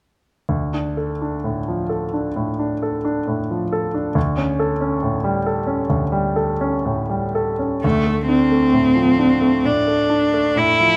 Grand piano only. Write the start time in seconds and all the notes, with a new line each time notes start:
0.49 D2
0.74 D4
0.97 A4
1.22 D4
1.44 A2
1.68 F3
1.89 A4
2.14 D4
2.36 A2
2.59 D4
2.83 A4
3.05 D4
3.27 A2
3.51 F3
3.72 A4
3.94 D4
4.15 D2
4.37 C#4
4.59 A4
4.81 C#4
5.03 A2
5.24 G3
5.46 A4
5.67 C#4
5.90 D2
6.12 G3
6.36 A4
6.61 C#4
6.85 A2
7.09 G3
7.35 A4
7.59 C#4
7.84 D2
8.07 A3
8.28 D4
8.52 A3
8.73 A2
8.95 F3
9.19 D4
9.41 A3
9.64 A2
9.87 A3
10.10 D4
10.34 A3
10.55 A2
10.80 F3